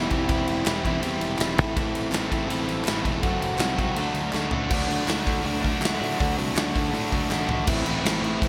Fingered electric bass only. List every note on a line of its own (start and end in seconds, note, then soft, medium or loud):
0.11 0.27 E1 medium
0.29 0.45 E1 medium
0.48 0.64 E1 medium
0.66 0.98 E1 medium
1.02 1.18 E2 medium
1.20 1.36 E1 medium
1.39 1.59 E1 medium
1.59 1.74 A1 medium
1.77 1.93 A1 medium
1.94 2.10 A1 medium
2.12 2.29 A1 medium
2.32 2.47 A1 loud
2.49 2.66 A1 medium
2.68 2.84 A1 medium
2.86 3.02 A1 medium
3.06 3.22 E1 loud
3.24 3.40 F#1 medium
3.42 3.58 F#1 medium
3.59 3.92 C2 medium
3.97 4.13 D2 loud
4.14 4.31 D2 medium
4.34 4.50 D2 medium
4.52 4.68 D2 loud
4.71 4.99 D2 medium
5.08 5.22 D2 medium
5.27 5.41 D2 loud
5.45 5.73 D2 loud
5.81 5.95 D2 medium
6.01 6.15 A2 medium
6.21 6.34 D2 medium
6.37 6.51 C2 medium
6.56 6.70 D2 loud
6.76 6.89 D2 loud
6.93 7.07 A2 loud
7.12 7.26 D2 loud
7.30 7.44 A1 loud
7.48 7.62 A1 medium
7.68 7.83 A1 medium
7.86 8.01 A1 medium
8.03 8.19 A1 loud
8.22 8.37 A1 loud
8.42 8.48 A1 medium